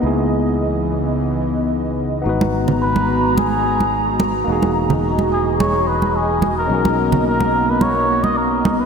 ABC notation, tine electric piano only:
X:1
M:4/4
L:1/8
Q:"Swing 16ths" 1/4=108
K:B
V:1 name="Tine electric piano"
[B,DEG]8 | [B,DFB]8 | [A,DFG]8 | [CDFA]8 |]